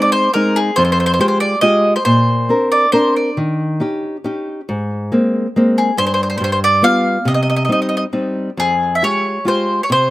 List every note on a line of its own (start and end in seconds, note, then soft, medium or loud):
0.00 0.28 G#3 soft
0.00 0.28 C4 soft
0.00 0.28 D#4 soft
0.00 0.10 D5 medium
0.12 0.32 C5 medium
0.34 0.70 G#3 soft
0.34 0.70 C4 soft
0.34 0.70 D#4 soft
0.34 0.58 A#4 medium
0.56 0.76 G#4 medium
0.76 1.19 F2 medium
0.76 0.83 C5 medium
0.85 0.91 C5 medium
0.92 0.99 C5 medium
1.00 1.05 C5 medium
1.06 1.12 C5 medium
1.14 1.19 C5 medium
1.19 1.54 G#3 soft
1.19 1.54 F4 soft
1.19 1.55 G4 soft
1.19 1.27 C5 medium
1.28 1.38 C5 medium
1.40 1.61 D5 medium
1.61 1.97 G#3 soft
1.61 1.97 F4 soft
1.61 1.97 G4 soft
1.61 1.93 D#5 medium
1.96 2.04 C5 medium
2.05 2.48 A#2 medium
2.05 2.68 C5 medium
2.49 2.84 C4 soft
2.49 2.85 D4 soft
2.49 2.85 A#4 soft
2.72 2.92 D5 medium
2.92 3.29 C4 soft
2.92 3.29 D4 soft
2.92 3.29 A#4 soft
2.92 3.14 C5 medium
3.16 3.36 D5 medium
3.37 3.80 D#3 medium
3.80 4.16 C#4 soft
3.80 4.16 D#4 soft
3.80 4.16 G4 soft
4.24 4.60 C#4 soft
4.24 4.60 D#4 soft
4.24 4.60 G4 soft
4.69 5.11 G#2 medium
5.12 5.46 G#3 soft
5.12 5.46 A#3 soft
5.12 5.47 C4 soft
5.56 5.89 G#3 soft
5.56 5.90 A#3 soft
5.56 5.90 C4 soft
5.78 5.96 G#4 medium
5.97 6.39 G2 medium
5.97 6.05 C5 medium
6.07 6.13 C5 medium
6.14 6.20 C5 medium
6.23 6.28 C5 medium
6.30 6.35 C5 medium
6.38 6.82 G2 medium
6.38 6.43 C5 medium
6.44 6.50 C5 medium
6.52 6.58 C5 medium
6.64 6.82 D5 medium
6.82 7.17 G3 soft
6.82 7.17 B3 soft
6.82 7.17 F4 soft
6.82 7.28 F5 loud
7.25 7.67 C3 medium
7.25 7.33 D#5 medium
7.34 7.41 D#5 medium
7.42 7.48 D#5 soft
7.50 7.55 D#5 medium
7.56 7.63 D#5 medium
7.65 8.04 G3 soft
7.65 7.71 D#5 soft
7.69 8.05 C4 soft
7.69 8.05 D#4 soft
7.69 7.79 D#5 medium
7.82 7.88 D#5 medium
7.89 7.95 D#5 medium
7.97 8.03 D#5 medium
8.13 8.49 G3 soft
8.13 8.49 C4 soft
8.13 8.49 D#4 soft
8.57 9.01 F2 medium
8.57 8.94 G#4 medium
8.95 9.02 E5 medium
9.02 9.38 G#3 soft
9.02 9.38 F4 soft
9.02 9.38 G4 soft
9.02 9.44 C#5 medium
9.45 9.80 G#3 soft
9.45 9.81 F4 soft
9.45 9.81 G4 soft
9.45 9.83 C5 medium
9.83 9.90 C#5 medium
9.90 10.10 C3 medium
9.90 10.10 C5 medium